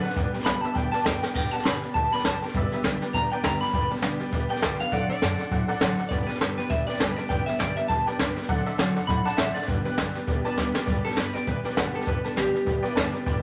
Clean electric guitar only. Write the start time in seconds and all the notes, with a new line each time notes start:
0.01 B4
0.45 B5
0.61 A5
0.75 G5
0.92 A5
1.05 G5
1.23 G5
1.35 G5
1.51 A5
1.64 B5
1.94 A5
2.13 B5
2.25 A5
2.42 G5
3.15 A#5
3.32 G5
3.44 A#5
3.61 B5
4.50 G5
4.80 F5
4.93 D5
5.10 D5
6.09 D5
6.27 B4
6.39 A4
6.58 B4
6.70 E5
6.87 D5
7.00 B4
7.16 D5
7.29 G5
7.46 E5
7.59 D5
7.77 E5
7.88 A5
8.06 G5
9.07 B5
9.25 A5
9.37 E5
9.55 D5
9.67 B4
9.85 B4
11.05 A4
11.16 B4
11.34 D5
11.48 B4
11.95 A4
12.08 B4
12.26 A4
12.37 G4